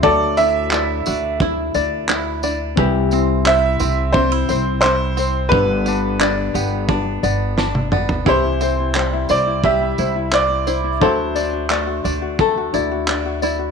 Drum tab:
TB |--x---x---x---x-|--x---x---x---x-|--x---x---x-----|--x---x---x---x-|
CP |----x-------x---|----x-------x---|----x-----------|----x-------x---|
SD |----------------|----------------|------------o---|----------------|
T1 |----------------|----------------|-------------o--|----------------|
T2 |----------------|----------------|--------------o-|----------------|
FT |----------------|----------------|---------------o|----------------|
BD |o-------o-------|o-------o-------|o-------o-------|o-------o-------|

TB |--x---x---x---x-|
CP |----x-------x---|
SD |----------------|
T1 |----------------|
T2 |----------------|
FT |----------------|
BD |o-------o-------|